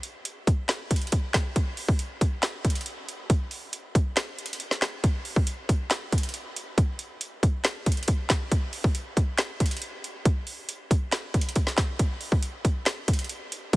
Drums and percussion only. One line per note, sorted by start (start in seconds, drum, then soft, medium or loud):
0.03 closed hi-hat medium
0.25 closed hi-hat medium
0.47 kick medium
0.47 closed hi-hat medium
0.69 snare loud
0.69 clap medium
0.69 closed hi-hat medium
0.91 kick medium
0.91 closed hi-hat medium
0.96 closed hi-hat medium
1.02 closed hi-hat medium
1.07 closed hi-hat soft
1.12 kick medium
1.12 closed hi-hat medium
1.34 kick loud
1.34 snare loud
1.34 clap medium
1.34 closed hi-hat medium
1.56 kick loud
1.56 closed hi-hat medium
1.77 open hi-hat medium
1.88 kick loud
1.99 closed hi-hat medium
2.21 kick medium
2.21 closed hi-hat medium
2.43 snare loud
2.43 clap medium
2.43 closed hi-hat medium
2.65 kick medium
2.65 closed hi-hat medium
2.70 closed hi-hat medium
2.75 closed hi-hat medium
2.81 closed hi-hat soft
2.86 closed hi-hat medium
3.09 closed hi-hat medium
3.30 kick loud
3.30 closed hi-hat medium
3.51 open hi-hat medium
3.73 closed hi-hat medium
3.95 kick medium
3.95 closed hi-hat medium
4.17 snare loud
4.17 clap medium
4.17 closed hi-hat medium
4.39 closed hi-hat medium
4.46 closed hi-hat medium
4.53 closed hi-hat medium
4.60 closed hi-hat medium
4.71 snare medium
4.82 snare loud
4.82 clap medium
4.82 closed hi-hat medium
5.04 kick loud
5.04 closed hi-hat medium
5.25 open hi-hat medium
5.36 kick loud
5.47 closed hi-hat medium
5.69 kick medium
5.69 closed hi-hat medium
5.91 snare loud
5.91 clap medium
5.91 closed hi-hat medium
6.12 kick medium
6.12 closed hi-hat medium
6.18 closed hi-hat medium
6.23 closed hi-hat medium
6.29 closed hi-hat soft
6.34 closed hi-hat medium
6.56 closed hi-hat medium
6.78 kick loud
6.78 closed hi-hat medium
6.99 closed hi-hat medium
7.21 closed hi-hat medium
7.43 kick medium
7.43 closed hi-hat medium
7.64 snare loud
7.64 clap medium
7.64 closed hi-hat medium
7.86 kick medium
7.86 closed hi-hat medium
7.92 closed hi-hat medium
7.97 closed hi-hat medium
8.03 closed hi-hat soft
8.08 kick medium
8.08 closed hi-hat medium
8.30 kick loud
8.30 snare loud
8.30 clap medium
8.30 closed hi-hat medium
8.52 kick loud
8.52 closed hi-hat medium
8.73 open hi-hat medium
8.84 kick loud
8.95 closed hi-hat medium
9.17 kick medium
9.17 closed hi-hat medium
9.38 snare loud
9.38 clap medium
9.38 closed hi-hat medium
9.60 kick medium
9.60 closed hi-hat medium
9.66 closed hi-hat medium
9.71 closed hi-hat medium
9.77 closed hi-hat soft
9.82 closed hi-hat medium
10.04 closed hi-hat medium
10.25 kick loud
10.25 closed hi-hat medium
10.47 open hi-hat medium
10.69 closed hi-hat medium
10.91 kick medium
10.91 closed hi-hat medium
11.12 snare loud
11.12 clap medium
11.12 closed hi-hat medium
11.34 kick medium
11.34 closed hi-hat medium
11.41 closed hi-hat medium
11.49 closed hi-hat medium
11.56 kick medium
11.56 closed hi-hat medium
11.67 snare medium
11.78 kick loud
11.78 snare loud
11.78 clap medium
11.78 closed hi-hat medium
11.99 kick loud
11.99 closed hi-hat medium
12.21 open hi-hat medium
12.32 kick loud
12.43 closed hi-hat medium
12.65 kick medium
12.65 closed hi-hat medium
12.86 snare loud
12.86 clap medium
12.86 closed hi-hat medium
13.08 kick medium
13.08 closed hi-hat medium
13.13 closed hi-hat medium
13.19 closed hi-hat medium
13.24 closed hi-hat soft
13.29 closed hi-hat medium
13.52 closed hi-hat medium
13.73 kick loud
13.73 closed hi-hat medium